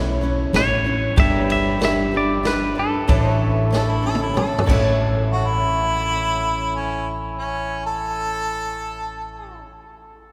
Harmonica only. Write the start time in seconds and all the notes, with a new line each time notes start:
3.73 A4
3.90 E4
4.06 A4
4.21 E4
4.37 A4
5.32 F#4
5.47 E4
6.75 C#4
7.38 C#4
7.86 A4